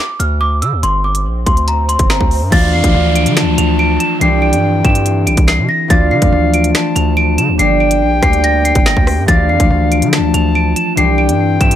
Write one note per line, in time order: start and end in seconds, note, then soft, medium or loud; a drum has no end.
0.00 0.17 D6 medium
0.00 swell medium
0.20 0.64 D2 loud
0.20 0.36 F6 medium
0.20 closed hi-hat medium
0.41 0.57 D6 loud
0.62 0.74 D3 loud
0.62 0.78 E6 medium
0.62 closed hi-hat medium
0.73 0.83 D2 loud
0.83 1.27 G1 loud
0.83 0.99 C6 loud
0.83 closed hi-hat medium
1.04 1.20 D6 medium
1.15 closed hi-hat medium
1.25 1.46 A#1 loud
1.46 1.97 D2 loud
1.46 1.62 C6 medium
1.46 kick loud
1.46 closed hi-hat medium
1.57 closed hi-hat soft
1.68 1.84 A#5 medium
1.68 closed hi-hat medium
1.89 2.05 C6 medium
1.89 closed hi-hat medium
1.99 2.20 G1 loud
1.99 kick loud
1.99 closed hi-hat medium
2.10 2.50 A#5 medium
2.10 finger snap medium
2.10 snare loud
2.21 2.43 D2 loud
2.21 kick loud
2.31 open hi-hat soft
2.42 2.52 G2 loud
2.50 2.75 D2 loud
2.50 4.18 E3 loud
2.50 4.20 F3 medium
2.50 2.77 A3 loud
2.50 2.77 D4 loud
2.50 4.20 D4 medium
2.50 4.20 F4 medium
2.50 2.78 F4 medium
2.50 2.78 D5 loud
2.50 3.33 F5 loud
2.50 2.68 A6 loud
2.50 kick loud
2.50 closed hi-hat medium
2.50 crash loud
2.50 downlifter medium
2.73 2.83 F2 loud
2.73 2.89 C7 medium
2.82 2.94 D2 loud
2.82 4.26 F3 medium
2.82 5.89 A3 medium
2.82 4.21 D4 medium
2.82 4.25 F4 medium
2.82 4.23 D5 medium
2.82 kick loud
2.82 closed hi-hat medium
2.94 3.28 D2 loud
3.16 3.55 D7 medium
3.16 closed hi-hat medium
3.26 3.43 D3 loud
3.26 closed hi-hat medium
3.37 4.17 A5 loud
3.37 finger snap loud
3.37 snare loud
3.37 closed hi-hat medium
3.42 3.57 D2 loud
3.58 3.98 D2 loud
3.58 3.74 F7 medium
3.58 closed hi-hat medium
3.79 3.95 D7 loud
4.00 4.16 E7 medium
4.00 closed hi-hat medium
4.19 4.54 C2 loud
4.19 5.89 D3 medium
4.19 4.82 E3 loud
4.19 4.84 C4 medium
4.19 5.89 C4 medium
4.19 4.85 D4 loud
4.19 5.89 E4 medium
4.19 4.86 G4 medium
4.19 5.92 D5 loud
4.19 5.44 G5 loud
4.19 4.37 C7 loud
4.19 closed hi-hat medium
4.42 4.58 D7 medium
4.53 4.83 G2 loud
4.53 closed hi-hat medium
4.83 5.28 G2 loud
4.83 5.87 E3 medium
4.83 7.84 C4 medium
4.83 5.90 D4 medium
4.83 7.21 G4 medium
4.83 5.97 E5 medium
4.83 5.24 E7 medium
4.83 kick loud
4.83 closed hi-hat medium
4.95 closed hi-hat medium
5.06 closed hi-hat medium
5.27 5.37 A#1 loud
5.27 5.43 D7 medium
5.27 closed hi-hat medium
5.37 5.60 C2 loud
5.37 kick loud
5.37 closed hi-hat medium
5.48 5.64 C7 medium
5.48 finger snap medium
5.48 snare loud
5.59 5.69 C3 loud
5.69 5.85 A#6 medium
5.88 6.13 D2 loud
5.88 7.64 E3 loud
5.88 7.58 F3 medium
5.88 6.15 A3 loud
5.88 6.15 D4 medium
5.88 7.58 D4 medium
5.88 7.58 F4 loud
5.88 6.16 F4 loud
5.88 6.16 D5 loud
5.88 6.71 F5 loud
5.88 6.06 A6 loud
5.88 kick loud
5.88 closed hi-hat medium
6.11 6.21 D3 loud
6.11 6.27 C7 medium
6.20 6.32 F2 loud
6.20 7.64 F3 medium
6.20 7.64 A3 medium
6.20 7.59 D4 medium
6.20 8.75 F4 medium
6.20 7.61 D5 medium
6.20 kick loud
6.20 closed hi-hat medium
6.32 6.73 D2 loud
6.54 6.94 D7 medium
6.54 closed hi-hat medium
6.64 closed hi-hat medium
6.75 7.55 A5 medium
6.75 finger snap loud
6.75 snare loud
6.75 closed hi-hat medium
6.96 7.40 D2 loud
6.96 7.12 F7 medium
6.96 closed hi-hat medium
7.17 7.33 D7 loud
7.38 7.50 D3 loud
7.38 7.54 E7 medium
7.38 closed hi-hat medium
7.49 7.59 D2 loud
7.58 8.03 G1 loud
7.58 9.27 D3 medium
7.58 8.20 G3 loud
7.58 8.21 A#3 medium
7.58 9.27 A#3 medium
7.58 8.22 D4 medium
7.58 9.27 G4 medium
7.58 8.23 A#4 medium
7.58 8.24 D5 loud
7.58 9.24 G5 loud
7.58 7.75 C7 loud
7.58 closed hi-hat medium
7.80 7.96 D7 medium
7.91 closed hi-hat medium
8.01 8.22 A#1 loud
8.21 8.73 D2 loud
8.21 9.33 G3 medium
8.21 9.33 A#3 medium
8.21 9.28 D4 medium
8.21 9.33 A#4 medium
8.21 9.30 D5 medium
8.21 8.38 C7 medium
8.21 kick loud
8.21 cross-stick loud
8.21 closed hi-hat medium
8.33 closed hi-hat soft
8.44 8.60 A#6 medium
8.44 closed hi-hat medium
8.65 8.81 C7 medium
8.65 closed hi-hat medium
8.75 8.96 G1 loud
8.75 kick loud
8.75 closed hi-hat medium
8.86 9.26 A#6 medium
8.86 finger snap medium
8.86 snare loud
8.97 9.19 D2 loud
8.97 kick loud
9.07 cross-stick loud
9.07 open hi-hat medium
9.18 9.28 G2 loud
9.26 9.51 D2 loud
9.26 10.94 E3 loud
9.26 10.96 F3 medium
9.26 9.53 A3 medium
9.26 9.53 D4 loud
9.26 10.96 D4 medium
9.26 10.96 F4 medium
9.26 9.54 F4 medium
9.26 9.54 D5 loud
9.26 10.09 F5 loud
9.26 9.44 A6 loud
9.26 kick loud
9.26 closed hi-hat medium
9.49 9.59 F2 loud
9.49 9.65 C7 medium
9.58 9.70 D2 loud
9.58 11.02 F3 medium
9.58 11.76 A3 medium
9.58 10.97 D4 medium
9.58 11.01 F4 medium
9.58 10.99 D5 medium
9.58 kick loud
9.58 closed hi-hat medium
9.71 10.04 D2 loud
9.92 10.31 D7 medium
9.92 closed hi-hat medium
10.02 10.20 D3 loud
10.02 closed hi-hat medium
10.13 10.93 A5 loud
10.13 finger snap loud
10.13 snare loud
10.13 closed hi-hat medium
10.18 10.33 D2 loud
10.34 10.74 D2 loud
10.34 10.50 F7 medium
10.34 closed hi-hat medium
10.55 10.71 D7 medium
10.76 10.92 E7 medium
10.76 closed hi-hat medium
10.95 11.30 C2 loud
10.95 11.76 D3 medium
10.95 11.58 E3 loud
10.95 11.60 C4 medium
10.95 11.76 C4 medium
10.95 11.61 D4 loud
10.95 11.76 E4 medium
10.95 11.62 G4 medium
10.95 11.76 D5 loud
10.95 11.76 G5 loud
10.95 11.13 C7 loud
10.95 closed hi-hat medium
11.18 11.34 D7 medium
11.29 11.59 G2 loud
11.29 closed hi-hat medium
11.59 11.76 G2 loud
11.59 11.76 E3 medium
11.59 11.76 C4 medium
11.59 11.76 D4 medium
11.59 11.76 G4 medium
11.59 11.76 E5 medium
11.59 11.76 E7 medium
11.59 kick loud
11.59 closed hi-hat medium
11.71 closed hi-hat medium